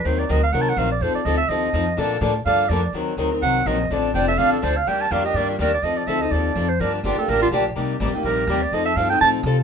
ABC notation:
X:1
M:4/4
L:1/8
Q:"Swing" 1/4=249
K:Eblyd
V:1 name="Clarinet"
c d e f (3_g a g f d | c d e =e _e4 | z4 f2 d2 | z4 _g2 e2 |
z2 g =e f A c f | g a f e d F B d | e d =e _e d3 c | B D F A B F z2 |
z4 B3 d | e =e f g a z3 |]
V:2 name="Steel-string acoustic guitar"
[E,_G,CEB] z [E,G,CEB] z [E,G,CEB] z [E,G,CEB] z | [F,CEA] z [F,CEA] z [F,CEA] z [F,CEA] z | [D,F,B,DA] z [D,F,B,DA] z [D,F,B,DA] z [D,F,B,DA] z | [E,_G,CEB] z [E,G,CEB] [CEB] [E,G,CEB] z [E,G,CEB] z |
[D,F,CDA] z [D,F,CDA] [CDA] [D,F,CDA] z [D,F,CDA] z | [E,G,B,DG] z [E,G,B,DG] [B,DG] [E,G,B,DG] z [E,G,B,DG] z | [F,CEA] z [F,CEA] [CEA] [F,CEA] z [F,CEA] z | [D,F,B,DG] z [D,F,B,DG] [B,DG] [D,F,B,DG] z [D,F,B,DG] z |
[C,G,B,EG] z [C,G,B,EG] [B,EG] [C,G,B,EG] z [C,G,B,EG] z | [F,CEA] z [F,CEA] [CEA] [F,CEA] z [F,CEA] z |]
V:3 name="Upright bass" clef=bass
E,,2 D,,2 C,,2 B,,,2 | F,, z D,,2 E,,2 F,,2 | B,,2 A,,2 G,,2 F,,2 | E,,2 D,,2 C,,2 B,,,2 |
A,,,2 F,,,2 A,,,2 D,,2 | E,,2 F,,2 G,,2 E,,2 | F,,2 D,,2 E,,2 F,,2 | G,,2 G,,, z A,,,2 B,,,2 |
C,,2 A,,, z B,,,2 E,,2 | F,,2 G,,2 A,,2 C,2 |]